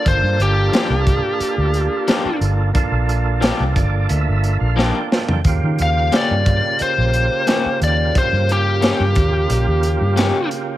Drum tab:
HH |x-x-x-x-x-x-x-x-|x-x-x-x-x-x-----|x-x-x-x-x-x-x-x-|x-x-x-x-x-x-x-x-|
SD |----o-------o---|----o-------o-o-|----o-------o---|----o-------o---|
FT |----------------|---------------o|----------------|----------------|
BD |o-----o---------|o-----o---------|o-----o---------|o-----o---------|